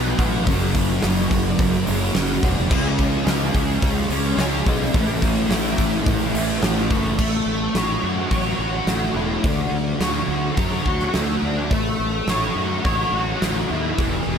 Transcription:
Already playing: fingered electric bass B1, distorted electric guitar B2 F#3 B3
0.18 fingered electric bass A1, distorted electric guitar F#3 B3, kick, open hi-hat
0.47 fingered electric bass F#1, distorted electric guitar F#2 C#3 F#3, kick, open hi-hat
0.75 kick, open hi-hat
1.02 fingered electric bass F#1, distorted electric guitar F#2 C#3 F#3, snare, open hi-hat
1.31 fingered electric bass F#1, kick, open hi-hat
1.59 fingered electric bass F#1, kick, open hi-hat
1.87 fingered electric bass F#1, distorted electric guitar C#3 F#3, open hi-hat
2.14 fingered electric bass F#1, distorted electric guitar F#2 C#3 F#3, snare, open hi-hat
2.42 fingered electric bass E1, distorted electric guitar C#3 F#3, kick, open hi-hat
2.69 fingered electric bass C#2, distorted electric guitar C#3 G#3 C#4, kick, crash
2.99 kick, open hi-hat
3.26 fingered electric bass C#2, distorted electric guitar C#3 G#3 C#4, snare, open hi-hat
3.54 fingered electric bass C#2, kick, open hi-hat
3.82 fingered electric bass C#2, kick, open hi-hat
4.09 fingered electric bass C#2, distorted electric guitar G#3 C#4, open hi-hat
4.37 fingered electric bass C#2, distorted electric guitar C#3 G#3 C#4, snare, open hi-hat
4.66 fingered electric bass B1, distorted electric guitar G#3 C#4, kick, open hi-hat
4.94 fingered electric bass A1, distorted electric guitar A2 E3 A3, kick, open hi-hat
5.22 kick, open hi-hat
5.49 fingered electric bass A1, distorted electric guitar A2 E3 A3, snare, open hi-hat
5.78 fingered electric bass A1, kick, open hi-hat
6.06 fingered electric bass A1, kick, open hi-hat
6.33 fingered electric bass A1, distorted electric guitar E3 A3, open hi-hat
6.61 fingered electric bass A1, distorted electric guitar A2 E3 A3, snare, open hi-hat
6.90 fingered electric bass F#1, distorted electric guitar E3 A3, kick, open hi-hat
7.18 fingered electric bass A1, distorted electric guitar A3, kick, crash
7.46 fingered electric bass A1
7.74 fingered electric bass A1, distorted electric guitar C#5, snare, open hi-hat
8.03 fingered electric bass F#2, distorted electric guitar F#4
8.31 fingered electric bass A1, distorted electric guitar C#5, kick, open hi-hat
8.59 fingered electric bass A1, distorted electric guitar F#4
8.86 fingered electric bass A1, distorted electric guitar A3, snare, open hi-hat
9.14 fingered electric bass E1, distorted electric guitar E4
9.44 fingered electric bass D2, distorted electric guitar D3, kick, open hi-hat
9.72 fingered electric bass D2
9.99 fingered electric bass D2, distorted electric guitar C#5, snare, open hi-hat
10.28 fingered electric bass D2, distorted electric guitar F#4
10.57 fingered electric bass F#2, distorted electric guitar C#5, kick, open hi-hat
10.85 fingered electric bass D2, distorted electric guitar F#4, kick
11.00 snare
11.14 fingered electric bass D2, distorted electric guitar A3, snare, open hi-hat
11.42 fingered electric bass D2, distorted electric guitar D4
11.71 fingered electric bass A1, distorted electric guitar A3, kick, open hi-hat
12.00 fingered electric bass A1
12.27 fingered electric bass A1, distorted electric guitar C#5, snare, open hi-hat
12.56 fingered electric bass F#2, distorted electric guitar F#4
12.85 fingered electric bass A1, distorted electric guitar C#5, kick, open hi-hat
13.12 fingered electric bass A1, distorted electric guitar F#4
13.42 fingered electric bass A1, distorted electric guitar A3, snare, open hi-hat
13.70 fingered electric bass D#2, distorted electric guitar E4
13.98 fingered electric bass E1, distorted electric guitar E3, kick, open hi-hat
14.27 fingered electric bass E1

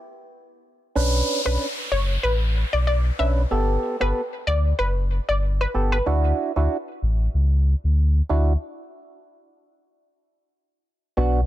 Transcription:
0.95 sub bass B1, synth stab C#4 D4 B4, downlifter
1.45 sub bass B1, synth stab C#4 D4 B4, synth pluck B4
1.91 sub bass F#1, synth pluck C#5
2.23 sub bass A1, synth pluck B4
2.73 sub bass B1, synth pluck D5
2.87 synth pluck D5
3.19 sub bass B1, synth stab C#4 D4 B4, synth pluck E5
3.51 sub bass G1, synth stab B3 G4 A4
4.00 sub bass G1, synth stab B3 G4 A4, synth pluck B4
4.47 sub bass D2, synth pluck D5
4.79 sub bass F#1, synth pluck B4
5.29 sub bass G1, synth pluck D5
5.61 synth pluck B4
5.74 sub bass G1, synth stab B3 G4 A4
5.92 synth pluck B4
6.06 sub bass D2, synth stab D4 E4 F#4
6.56 sub bass D2, synth stab D4 E4 F#4
7.02 sub bass A1
7.34 sub bass C#2
7.84 sub bass D2
8.29 sub bass D2, synth stab D4 E4 F#4
11.17 sub bass B1, synth stab B3 D4 F#4

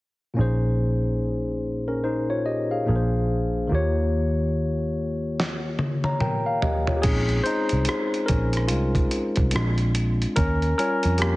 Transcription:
0.34 tine electric piano A#2 A#3 C#4
0.38 picked electric bass A#1, tine electric piano D#4 G#4 C5
1.88 tine electric piano C#4 A#4
2.04 tine electric piano D#4 C5
2.30 tine electric piano F4 C#5
2.46 tine electric piano G4 D#5
2.71 tine electric piano G#4 F5
2.85 picked electric bass A#1, tine electric piano A#2 A#3 D4 G#4 A#4
2.96 tine electric piano C5
3.67 tine electric piano D#3 A#3 F4
3.72 picked electric bass D#2, tine electric piano G4 C#5
5.40 snare
5.79 high tom
6.04 tine electric piano C#5 A#5, high tom
6.20 tine electric piano A#4 G5, mid tom
6.46 tine electric piano F5
6.62 tine electric piano G4 D#5, floor tom
6.87 tine electric piano F4 C#5, floor tom
6.97 tine electric piano G4
7.02 picked electric bass A#1, tine electric piano G#3 C4 C#4 D#4 G#4, kick, closed hi-hat, crash
7.29 closed hi-hat
7.43 tine electric piano D#4 C5, closed hi-hat
7.69 picked electric bass C2, closed hi-hat
7.85 cross-stick, closed hi-hat
8.14 closed hi-hat
8.26 picked electric bass A#1, tine electric piano C#4 A#4, kick, closed hi-hat
8.53 closed hi-hat
8.57 cross-stick
8.67 tine electric piano G#3 F4, closed hi-hat
8.72 picked electric bass C2
8.95 kick, closed hi-hat
9.11 closed hi-hat
9.36 picked electric bass C2, kick, closed hi-hat
9.51 picked electric bass A#1, tine electric piano G#3 C4 D4, closed hi-hat
9.56 cross-stick
9.78 closed hi-hat
9.95 closed hi-hat
10.22 closed hi-hat
10.36 picked electric bass D#2, tine electric piano C#4 A#4, kick, closed hi-hat
10.62 closed hi-hat
10.78 tine electric piano G3 C#4 F4 A#4, closed hi-hat
11.03 picked electric bass F2, closed hi-hat
11.18 tine electric piano A#3 G4, cross-stick, closed hi-hat

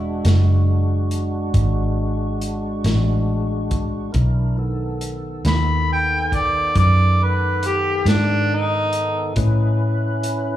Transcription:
Already playing: fingered electric bass E1, tonewheel organ G#3 D4 F#4
0.25 fingered electric bass F#1, snare, closed hi-hat
1.11 closed hi-hat
1.54 fingered electric bass G#1, kick, closed hi-hat
2.41 closed hi-hat
2.84 fingered electric bass A1, snare, closed hi-hat
3.71 kick, closed hi-hat
4.12 fingered electric bass B1, tonewheel organ D4 E4 A#4, kick, closed hi-hat
4.58 tonewheel organ D#3 B3 A4
5.01 closed hi-hat
5.45 fingered electric bass D#2, harmonica B5, snare, closed hi-hat
5.92 harmonica G5
6.32 harmonica D5, kick, closed hi-hat
6.76 fingered electric bass F#2, harmonica D5, kick, closed hi-hat
7.23 harmonica B4
7.63 harmonica G4, closed hi-hat
8.05 fingered electric bass G#2, harmonica D4, snare, closed hi-hat
8.54 harmonica D#4
8.93 closed hi-hat
9.36 fingered electric bass A2, tonewheel organ C#4 E4 B4, kick, closed hi-hat
10.23 closed hi-hat

